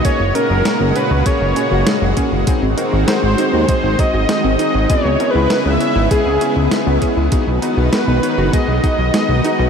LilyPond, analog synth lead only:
\new Staff \with { instrumentName = "Analog synth lead" } { \time 4/4 \key b \major \tempo 4 = 99 cis''8 ais'4 b'8 cis''4. r8 | r4 bis'4 bis'8 dis''4 dis''8 | \tuplet 3/2 { cis''4 b'8~ b'8 e''4 } gis'4 r4 | r4 b'4 dis''2 | }